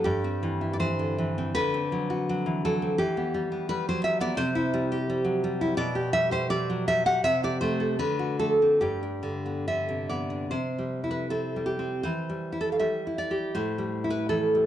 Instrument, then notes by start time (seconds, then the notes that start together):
nylon-string guitar
0.04 G2 G4
0.24 C4
0.43 E3
0.61 E4
0.73 D5
0.80 E3 C5
0.99 D3
1.18 E3
1.38 C4
1.55 D3 B4
1.74 C4
1.92 F#3
2.10 F#4
2.29 F#3
2.46 E3
2.65 F#3 A4
2.82 C4
2.98 E3 G4
3.17 B3
3.34 G3
3.52 B3
3.69 G3 B4
3.89 F#3 C5
4.04 G3 E5
4.20 B3 D5
4.37 C3 C5
4.55 E4
4.74 G3
4.92 G4
5.10 G3
5.24 F#3
5.44 G3
5.61 E4
5.77 B2 D5
5.95 G4
6.13 G3 E5
6.31 G4 C5
6.50 G3 D5
6.70 F#3
6.88 G3 E5
7.06 G4 F#5
7.24 C3 E5
7.43 G4 D5
7.61 A3 C5
7.80 A4
7.99 D3 B4
8.19 F#4
8.39 A3 A4
8.62 C4
8.81 G2 G4
9.03 D4
9.23 D3
9.46 B3
9.68 D3 E5
9.89 C3
10.09 B3 D5
10.30 D4
10.51 C3 C5
10.78 G3
11.04 E4
11.11 B4
11.30 C4 A4
11.56 G3
11.66 G4
11.79 C4
12.03 E3 C5
12.29 G3
12.52 E4
12.61 A4
12.72 F5
12.79 G3 E5
13.07 E4
13.18 D5
13.31 G4
13.55 A2 C5
13.78 G3
14.04 E4
14.10 B4
14.29 E3 A4
14.55 G3